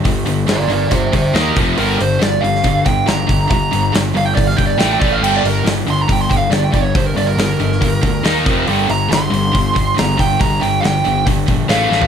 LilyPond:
<<
  \new Staff \with { instrumentName = "Lead electric guitar" } { \time 4/4 \key g \minor \tempo 4 = 139 r4 <bes' d''>8 <bes' d''>8 <g' c''>8 <g' c''>8 bes'8 r8 | bes'8 c''8 d''8 f''4 g''8 bes''4 | bes''4 r8 f''16 g''16 d''16 f''16 g''16 d''16 g''16 g''16 d''16 f''16 | g''16 d''16 bes'8 r8 c'''16 bes''16 g''16 c'''16 g''16 f''16 d''16 g''16 d''16 cis''16 |
c''16 bes'16 d''16 bes'16 bes'2. | r8 bes''8 c'''2 bes''8 g''8 | bes''8 g''8 g''4 r4 f''4 | }
  \new Staff \with { instrumentName = "Distorted electric guitar" } { \clef bass \time 4/4 \key g \minor <g, d>8 <g, d>8 <g, d>8 <g, d>8 <g, d>8 <g, d>8 <ees bes ees'>8 <f, c f>8 | <g, d g>8 <g, d>8 <g, d>8 <g, d>8 <g, d>8 <g, d>8 <g, d>8 <g, d>8 | <g, d>8 <g, d>8 <g, d>8 <g, d>8 <g, d>8 <g, d>8 <a, e a>8 <a, e a>8 | <g, d g>8 <g, d>8 <g, d>8 <g, d>8 <g, d>8 <g, d>8 <g, d>8 <g, d>8 |
<g, d>8 <g, d>8 <g, d>8 <g, d>8 <g, d>8 <g, d>8 <ees bes ees'>8 <f, c f>8 | <g, d g>8 <g, d>8 <g, d>8 <g, d>8 <g, d>8 <g, d>8 <g, d>8 <g, d>8 | <g, d>8 <g, d>8 <g, d>8 <g, d>8 <g, d>8 <g, d>8 <a, e a>8 <a, e a>8 | }
  \new Staff \with { instrumentName = "Overdriven electric guitar" } { \clef bass \time 4/4 \key g \minor <g, d>8 <g, d>8 <g, d>8 <g, d>8 <g, d>8 <g, d>8 <ees bes ees'>8 <f, c f>8 | <g, d g>8 <g, d>8 <g, d>8 <g, d>8 <g, d>8 <g, d>8 <g, d>8 <g, d>8 | <g, d>8 <g, d>8 <g, d>8 <g, d>8 <g, d>8 <g, d>8 <a, e a>8 <a, e a>8 | <g, d g>8 <g, d>8 <g, d>8 <g, d>8 <g, d>8 <g, d>8 <g, d>8 <g, d>8 |
<g, d>8 <g, d>8 <g, d>8 <g, d>8 <g, d>8 <g, d>8 <ees bes ees'>8 <f, c f>8 | <g, d g>8 <g, d>8 <g, d>8 <g, d>8 <g, d>8 <g, d>8 <g, d>8 <g, d>8 | <g, d>8 <g, d>8 <g, d>8 <g, d>8 <g, d>8 <g, d>8 <a, e a>8 <a, e a>8 | }
  \new Staff \with { instrumentName = "Picked electric bass" } { \clef bass \time 4/4 \key g \minor g,,8 g,,8 g,,8 g,,8 g,,8 g,,8 ees,8 f,,8 | g,,8 g,,8 g,,8 g,,8 g,,8 g,,8 g,,8 g,,8 | g,,8 g,,8 g,,8 g,,8 g,,8 g,,8 a,,8 a,,8 | g,,8 g,,8 g,,8 g,,8 g,,8 g,,8 g,,8 g,,8 |
g,,8 g,,8 g,,8 g,,8 g,,8 d,8 ees,8 f,,8 | g,,8 g,,8 g,,8 g,,8 g,,8 g,,8 g,,8 g,,8 | g,,8 g,,8 g,,8 g,,8 g,,8 bes,,8 a,,8 a,,8 | }
  \new DrumStaff \with { instrumentName = "Drums" } \drummode { \time 4/4 <hho bd>8 hho8 <hho sn>8 hho8 <hho bd>8 <hho bd>8 <hho sn>8 <hho bd>8 | hho8 hho8 <hho sn>8 hho16 sn16 <hho bd>8 <hho bd>8 <hho sn>8 <hho bd>8 | <hho bd>8 hho8 <hho sn>8 hho8 <hho bd>16 sn16 <hho bd>8 <hho sn>8 <hho bd>8 | cymc8 hho8 <hho sn>8 hho8 <hho bd>8 <hho bd>8 <hho sn>8 <hho bd>8 |
<hho bd>8 hho8 <hho sn>8 hho16 sn16 <hho bd>8 <hho bd>8 <hho sn>8 <hho bd>8 | hho8 hho8 <hho sn>8 hho8 <hho bd>8 <hho bd>8 <hho sn>8 <hho bd>8 | <hho bd>8 hho8 <hho sn>8 hho8 <hho bd>8 <hho bd>8 <hho sn>8 sn16 tomfh16 | }
>>